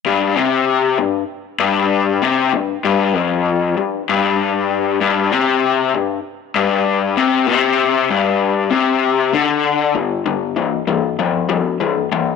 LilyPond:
\new Staff \with { instrumentName = "Overdriven electric guitar" } { \clef bass \time 4/4 \key c \lydian \tempo 4 = 97 g,8 c4 g,8 r8 g,4 c8 | g,8 g,8 f,4 g,8 g,4. | g,8 c4 g,8 r8 g,4 c8 | c4 g,4 c4 d4 |
\key c \major <g, d>8 <g, d>8 <g, e>8 <g, e>8 <g, f>8 <g, f>8 <g, e>8 <g, e>8 | }